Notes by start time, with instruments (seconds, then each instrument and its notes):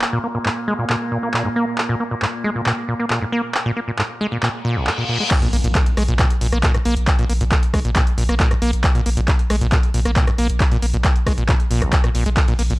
Already playing: synth drone A#2 A#3
0.02 clap
0.13 acid bass A#2
0.24 acid bass A#3
0.35 acid bass A#2
0.46 acid bass G#2, clap
0.68 acid bass G#3
0.79 acid bass A#2
0.90 acid bass A#2, clap
1.12 acid bass A#2
1.23 acid bass A#3
1.34 acid bass A#2, clap
1.45 acid bass G#2
1.56 acid bass A#3
1.78 clap
1.89 acid bass A#2
2.00 acid bass A#3
2.11 acid bass A#2
2.22 acid bass G#2, clap
2.44 acid bass G#3
2.55 acid bass A#2
2.66 acid bass A#2, clap
2.88 acid bass A#2
3.00 acid bass A#3
3.10 acid bass A#2, clap
3.22 acid bass G#2
3.32 acid bass A#3
3.54 clap
3.66 acid bass A#2
3.77 acid bass A#3
3.88 acid bass A#2
3.99 acid bass G#2, clap
4.21 acid bass G#3
4.32 acid bass A#2
4.43 acid bass A#2, clap, reverse cymbal
4.65 acid bass A#2
4.76 acid bass A#1
4.87 acid bass A#2, clap
4.98 acid bass A#2
5.09 acid bass A#2
5.20 acid bass G#3
5.31 kick, clap, closed hi-hat, crash, impact
5.42 acid bass A#2, closed hi-hat
5.53 sub bass A#1, acid bass A#3, open hi-hat
5.64 sub bass A#1, acid bass A#2, closed hi-hat
5.75 acid bass G#2, kick, clap, closed hi-hat
5.86 closed hi-hat
5.97 sub bass A#1, acid bass G#3, cross-stick, open hi-hat
6.08 sub bass A#1, acid bass A#2, closed hi-hat
6.19 acid bass A#2, kick, clap, closed hi-hat
6.30 closed hi-hat
6.41 sub bass A#1, acid bass A#2, open hi-hat
6.53 sub bass A#1, acid bass A#3, cross-stick, closed hi-hat
6.63 acid bass A#2, kick, clap, closed hi-hat
6.75 acid bass G#2, cross-stick, closed hi-hat
6.85 sub bass A#1, acid bass A#3, open hi-hat
6.97 sub bass A#1, closed hi-hat
7.07 kick, clap, closed hi-hat
7.19 acid bass A#2, closed hi-hat
7.29 sub bass A#1, acid bass A#3, open hi-hat
7.41 sub bass A#1, acid bass A#2, closed hi-hat
7.52 acid bass G#2, kick, clap, closed hi-hat
7.63 closed hi-hat
7.74 sub bass A#1, acid bass G#3, kick, cross-stick, open hi-hat
7.85 sub bass A#1, acid bass A#2, closed hi-hat
7.96 acid bass A#2, kick, clap, closed hi-hat
8.07 closed hi-hat
8.18 sub bass A#1, acid bass A#2, open hi-hat
8.29 sub bass A#1, acid bass A#3, cross-stick, closed hi-hat
8.40 acid bass A#2, kick, clap, closed hi-hat
8.51 acid bass G#2, cross-stick, closed hi-hat
8.62 sub bass A#1, acid bass A#3, open hi-hat
8.73 sub bass A#1, closed hi-hat
8.84 kick, clap, closed hi-hat
8.95 acid bass A#2, closed hi-hat
9.06 sub bass A#1, acid bass A#3, open hi-hat
9.17 sub bass A#1, acid bass A#2, closed hi-hat
9.28 acid bass G#2, kick, clap, closed hi-hat
9.39 closed hi-hat
9.50 sub bass A#1, acid bass G#3, cross-stick, open hi-hat
9.61 sub bass A#1, acid bass A#2, closed hi-hat
9.72 acid bass A#2, kick, clap, closed hi-hat
9.83 closed hi-hat
9.94 sub bass A#1, acid bass A#2, open hi-hat
10.05 sub bass A#1, acid bass A#3, cross-stick, closed hi-hat
10.16 acid bass A#2, kick, clap, closed hi-hat
10.27 acid bass G#2, cross-stick, closed hi-hat
10.38 sub bass A#1, acid bass A#3, open hi-hat
10.50 sub bass A#1, closed hi-hat
10.60 kick, clap, closed hi-hat
10.72 acid bass A#2, closed hi-hat
10.82 sub bass A#1, acid bass A#3, open hi-hat
10.94 sub bass A#1, acid bass A#2, closed hi-hat
11.04 acid bass G#2, kick, clap, closed hi-hat
11.16 closed hi-hat
11.27 sub bass A#1, acid bass G#3, kick, cross-stick, open hi-hat
11.38 sub bass A#1, acid bass A#2, closed hi-hat
11.49 acid bass A#2, kick, clap, closed hi-hat
11.60 closed hi-hat
11.71 sub bass A#1, acid bass A#2, open hi-hat
11.82 acid bass A#1, sub bass A#1, cross-stick, closed hi-hat
11.93 acid bass A#2, kick, clap, closed hi-hat
12.04 acid bass A#2, cross-stick, closed hi-hat
12.15 sub bass A#1, acid bass A#2, open hi-hat
12.26 sub bass A#1, acid bass G#3, closed hi-hat
12.37 kick, clap, closed hi-hat, ride
12.48 acid bass A#2, closed hi-hat
12.59 sub bass A#1, acid bass A#3, open hi-hat, ride
12.70 sub bass A#1, acid bass A#2, closed hi-hat